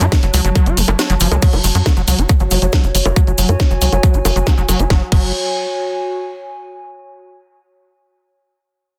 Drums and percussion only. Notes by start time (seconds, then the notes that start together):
0.01 closed hi-hat, cabasa
0.12 kick, snare, closed hi-hat, high bongo, cabasa
0.23 closed hi-hat, cabasa
0.34 open hi-hat, cabasa
0.45 closed hi-hat, cabasa
0.55 kick, closed hi-hat, high bongo, cabasa
0.66 closed hi-hat, cabasa
0.77 open hi-hat, cabasa
0.88 closed hi-hat, high bongo, cabasa
0.99 snare, closed hi-hat, cabasa
1.10 closed hi-hat, cabasa
1.20 open hi-hat, cabasa
1.32 closed hi-hat, high bongo, cabasa
1.42 kick, closed hi-hat, crash, cabasa
1.53 closed hi-hat, high bongo, cabasa
1.64 open hi-hat, cabasa
1.75 closed hi-hat, cabasa
1.86 kick, snare, closed hi-hat, high bongo, cabasa
1.97 closed hi-hat, cabasa
2.08 open hi-hat, cabasa
2.19 closed hi-hat, cabasa
2.29 kick, closed hi-hat, high bongo, cabasa
2.40 closed hi-hat, cabasa
2.51 open hi-hat, cabasa
2.62 closed hi-hat, cabasa
2.72 kick, snare, closed hi-hat, high bongo, cabasa
2.84 closed hi-hat, cabasa
2.95 open hi-hat, cabasa
3.05 closed hi-hat, high bongo, cabasa
3.16 kick, closed hi-hat, cabasa
3.27 closed hi-hat, cabasa
3.38 open hi-hat, cabasa
3.48 closed hi-hat, high bongo, cabasa
3.60 kick, snare, closed hi-hat, cabasa
3.71 closed hi-hat, cabasa
3.81 open hi-hat, cabasa
3.92 closed hi-hat, high bongo, cabasa
4.03 kick, closed hi-hat, cabasa
4.14 closed hi-hat, cabasa
4.25 open hi-hat, high bongo, cabasa
4.36 closed hi-hat, cabasa
4.47 kick, snare, closed hi-hat, cabasa
4.58 closed hi-hat, cabasa
4.69 open hi-hat, high bongo, cabasa
4.79 closed hi-hat, cabasa
4.90 kick, snare
5.12 kick, crash